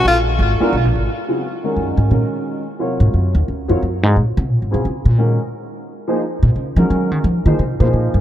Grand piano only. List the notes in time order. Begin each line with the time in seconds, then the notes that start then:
0.60 G#3 B3 D4 F4 A#4
1.28 C#3 F#3 C4 F4 G#4
1.64 D#3 G#3 C#4 F#4 A#4
2.10 D#3 G#3 C#4 F#4 A#4
2.79 C3 F#3 F4 A#4 C#5
3.68 F#3 C4 F4 A#4 C#5
4.71 C#3 F#3 C4 F4 G#4
5.18 D#3 G#3 C#4 F#4 A#4
6.08 F3 A#3 D#4 G#4 C5
6.77 D#3 G#3 C#4 F#4 A#4
7.46 F3 A#3 D#4 G#4 C5
7.80 F3 A#3 D#4 G#4 C5